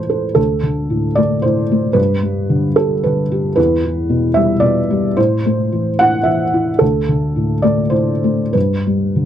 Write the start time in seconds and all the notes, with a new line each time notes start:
Already playing: A2 E3 A3 A4 B4 C5
0.10 A4
0.35 D2 A4
0.63 D3
0.90 A2
1.15 A3 D5
1.42 A2 C5
1.72 A3
1.93 G2 B4
2.23 G3
2.50 D3
2.76 G4 A4
3.04 D3 B4
3.32 G4
3.56 E2 B4
3.85 E3
4.09 B2
4.34 G3 E5
4.60 B2 D5
4.91 G3
5.17 A2 C5
5.46 A3
5.72 E3
5.99 E4 F#5
6.23 E3 E5
6.54 E4
6.79 D2 A4
7.09 D3
7.36 A2
7.62 A3 D5
7.90 A2 C5
8.24 A3
8.53 G2 B4
8.87 G3
9.16 D3